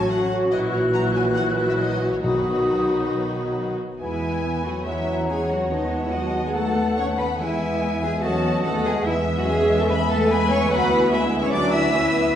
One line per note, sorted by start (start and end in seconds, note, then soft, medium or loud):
0.00 0.49 F#3 medium
0.00 0.50 F#3 medium
0.00 0.51 F#3 medium
0.00 0.48 C#4 medium
0.00 2.19 F#4 medium
0.00 0.48 A4 medium
0.00 0.11 G#5 medium
0.08 0.20 A3 medium
0.08 0.31 F#5 medium
0.08 0.51 C#6 medium
0.20 0.31 C#4 soft
0.30 0.41 F#4 medium
0.41 0.52 C#4 soft
0.51 2.19 A#1 medium
0.51 2.19 A#2 medium
0.51 2.19 E3 medium
0.51 2.23 E3 medium
0.51 0.91 F#3 medium
0.51 0.91 E4 medium
0.51 0.91 F#4 medium
0.51 0.59 D#5 medium
0.51 1.99 F#6 medium
0.72 0.80 C#5 medium
0.93 1.33 F#3 medium
0.93 1.34 E4 medium
0.93 1.35 F#4 medium
0.93 1.02 A#5 medium
1.15 1.23 G#5 medium
1.35 2.21 F#3 medium
1.35 2.21 E4 medium
1.35 2.22 F#4 medium
1.35 1.44 F#5 medium
1.69 1.73 E5 medium
1.78 2.11 D#5 medium
2.12 2.16 C#5 medium
2.22 3.77 B1 medium
2.22 2.86 B2 medium
2.22 3.78 B2 medium
2.22 3.76 D#3 medium
2.22 3.78 F#3 medium
2.22 3.78 D#4 medium
2.22 3.76 F#4 medium
2.22 3.78 F#4 medium
2.22 3.76 F#4 medium
2.22 3.76 B4 medium
2.22 3.79 D#6 medium
4.00 4.82 E2 soft
4.00 4.61 E3 medium
4.00 4.41 G#3 soft
4.00 4.82 B3 soft
4.00 4.42 B3 soft
4.00 4.61 E4 medium
4.00 4.61 E5 medium
4.00 4.82 G#5 medium
4.00 4.82 G#5 soft
4.00 4.83 B5 soft
4.44 4.65 B3 soft
4.64 4.87 F#3 soft
4.64 4.86 A3 soft
4.64 4.72 F#4 soft
4.64 4.86 F#5 soft
4.85 5.70 E2 soft
4.85 5.28 E3 medium
4.85 5.07 G#3 soft
4.85 5.26 C#4 soft
4.85 5.70 C#4 soft
4.85 5.28 E4 medium
4.85 5.28 E5 medium
4.85 7.37 F#5 soft
4.85 5.72 A#5 soft
5.06 5.28 F#3 soft
5.27 5.71 E3 soft
5.27 5.39 G#3 medium
5.27 5.70 C#4 soft
5.27 5.50 G#4 medium
5.27 6.11 C#5 medium
5.27 5.49 G#5 medium
5.50 5.60 F#3 soft
5.50 5.71 F#4 medium
5.50 5.71 F#5 soft
5.70 7.40 D#2 soft
5.70 5.86 D#3 medium
5.70 6.53 G#3 soft
5.70 6.55 B3 soft
5.70 9.03 B3 soft
5.70 6.03 D#4 medium
5.70 6.02 D#5 medium
5.70 7.37 A5 soft
6.02 6.13 E3 medium
6.02 6.13 E4 medium
6.02 6.13 E5 soft
6.12 6.45 F#3 medium
6.12 6.45 F#4 medium
6.12 6.55 D#5 medium
6.12 6.44 F#5 medium
6.44 6.55 G#3 medium
6.44 6.56 G#4 medium
6.44 6.55 G#5 medium
6.54 6.76 F#3 medium
6.54 6.97 A3 medium
6.54 6.98 A4 medium
6.54 7.38 F#5 medium
6.54 6.97 A5 medium
6.76 6.97 B3 medium
6.97 7.39 A3 soft
6.97 7.08 C#4 medium
6.97 7.06 C#5 medium
6.97 7.05 C#6 medium
7.18 7.29 B3 medium
7.18 7.27 B4 medium
7.18 7.39 B5 medium
7.39 8.23 E2 medium
7.39 8.02 E3 medium
7.39 7.80 G#3 medium
7.39 8.02 E4 medium
7.39 8.01 E5 medium
7.39 8.26 E5 medium
7.39 8.24 G#5 medium
7.39 8.24 G#5 soft
7.81 7.89 G#3 medium
7.81 8.01 B3 medium
8.02 8.24 G#3 medium
8.02 8.10 B3 medium
8.02 8.24 G#4 medium
8.02 8.23 G#5 medium
8.22 8.65 E2 medium
8.22 8.65 F#3 medium
8.22 8.32 A3 medium
8.22 8.65 C#4 medium
8.22 8.66 F#4 medium
8.22 9.08 D#5 medium
8.22 8.64 F#5 medium
8.22 8.64 A5 medium
8.22 9.07 A5 medium
8.44 9.05 A3 medium
8.64 9.06 D#2 medium
8.64 8.86 A3 medium
8.64 9.06 B3 medium
8.64 8.86 A4 medium
8.64 9.06 F#5 medium
8.64 8.72 A5 medium
8.86 8.96 G#3 medium
8.86 9.07 G#4 medium
8.86 8.94 G#5 medium
9.06 10.68 E2 medium
9.06 9.21 E3 medium
9.06 10.29 G#3 medium
9.06 12.04 B3 medium
9.06 9.47 B3 medium
9.06 9.14 E4 medium
9.06 10.30 E5 medium
9.06 12.09 E5 medium
9.06 9.38 E5 medium
9.37 9.48 F#3 medium
9.37 9.48 F#4 medium
9.37 9.48 F#5 medium
9.48 9.80 G#3 medium
9.48 9.89 C#4 medium
9.48 9.78 G#4 medium
9.48 9.56 G#5 medium
9.78 9.90 A3 medium
9.78 9.83 A4 medium
9.78 9.83 A5 medium
9.89 10.72 B3 medium
9.89 10.10 B3 medium
9.89 9.97 B4 medium
9.89 10.09 B5 medium
10.09 10.31 A3 medium
10.09 10.29 A4 loud
10.09 10.31 A5 medium
10.29 10.70 G#3 medium
10.29 10.40 B3 medium
10.29 10.50 B4 loud
10.29 10.70 G#5 medium
10.29 10.51 B5 medium
10.50 10.61 C#4 medium
10.50 10.71 C#5 medium
10.50 10.72 C#6 medium
10.70 12.33 D2 medium
10.70 10.92 F#3 medium
10.70 11.12 B3 medium
10.70 11.12 F#4 medium
10.70 11.11 B4 loud
10.70 11.12 F#5 medium
10.70 11.12 B5 medium
10.91 11.12 E3 medium
11.12 11.53 G#3 medium
11.12 11.43 B3 medium
11.12 11.53 E4 medium
11.12 11.20 B4 loud
11.12 11.52 E5 medium
11.12 11.21 B5 medium
11.42 11.52 C#4 medium
11.42 11.53 C#5 loud
11.42 11.53 C#6 medium
11.52 11.95 F#3 medium
11.52 11.95 D4 medium
11.52 11.74 D4 loud
11.52 11.93 D5 medium
11.52 11.73 D5 loud
11.52 11.73 D6 loud
11.72 12.35 E4 loud
11.72 12.35 E5 loud
11.72 12.34 E6 medium
11.94 12.35 E3 medium
11.94 12.15 C#4 medium
11.94 12.35 B4 medium
12.16 12.35 B3 medium